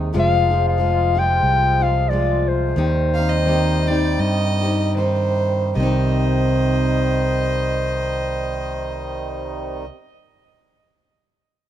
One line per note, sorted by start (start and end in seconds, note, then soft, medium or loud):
0.00 0.11 D#2 medium
0.00 5.75 C3 medium
0.00 0.13 D#3 medium
0.00 0.14 G#3 medium
0.00 2.74 G#3 medium
0.00 0.14 C4 medium
0.00 0.14 D#4 medium
0.00 0.14 G#4 medium
0.13 1.39 F1 loud
0.13 0.50 F2 medium
0.13 0.51 C3 medium
0.13 0.51 F3 medium
0.13 2.75 F3 medium
0.13 0.51 G#3 medium
0.13 0.50 F4 medium
0.13 0.49 G#4 medium
0.17 2.76 F4 medium
0.17 0.64 F5 loud
0.50 0.77 F3 soft
0.50 0.78 G#3 soft
0.50 0.79 F4 soft
0.50 0.78 G#4 medium
0.68 1.20 F5 loud
0.78 1.15 F3 medium
0.78 1.16 G#3 medium
0.78 1.15 F4 medium
0.78 1.14 G#4 medium
1.15 1.82 F3 soft
1.15 1.81 G#3 medium
1.15 1.80 F4 medium
1.15 1.78 G#4 medium
1.19 1.84 G5 loud
1.43 2.73 C2 medium
1.80 2.09 F3 soft
1.80 2.10 G#3 soft
1.80 2.09 F4 soft
1.80 2.09 G#4 medium
1.80 2.11 F5 loud
2.09 2.76 F3 medium
2.09 2.77 G#3 medium
2.09 2.78 F4 medium
2.09 2.50 D5 medium
2.13 2.78 G#4 medium
2.48 4.97 C5 medium
2.76 4.16 D#2 loud
2.76 3.16 D#3 medium
2.76 3.17 C4 medium
2.76 3.17 D#4 medium
2.76 3.15 G4 medium
2.80 5.76 D#3 medium
2.80 5.76 G3 medium
2.80 5.75 D#4 medium
3.14 3.46 D#4 soft
3.14 3.47 G4 soft
3.14 3.31 F5 medium
3.19 3.45 C4 soft
3.30 3.89 D#5 loud
3.45 3.88 D#3 medium
3.45 3.88 C4 medium
3.45 3.89 D#4 medium
3.45 3.87 G4 medium
3.87 4.64 C4 medium
3.87 4.62 D#4 medium
3.87 4.60 G4 medium
3.87 4.21 D5 loud
4.19 5.73 G2 medium
4.19 4.96 D#5 loud
4.61 4.96 C4 soft
4.61 4.97 D#4 medium
4.61 4.96 G4 medium
4.96 5.76 D#3 medium
4.96 5.77 C4 medium
4.96 5.78 D#4 medium
4.96 5.78 G4 medium
4.96 5.73 C5 medium
5.75 9.88 C2 medium
5.75 9.91 C3 medium
5.75 9.85 C3 medium
5.75 9.93 D#3 medium
5.75 9.85 D#3 medium
5.75 9.85 G3 medium
5.75 9.85 D#4 medium
5.75 9.85 C5 medium
5.75 9.85 D#5 medium
5.80 9.96 C4 medium
5.80 9.99 D#4 medium
5.86 10.02 G4 medium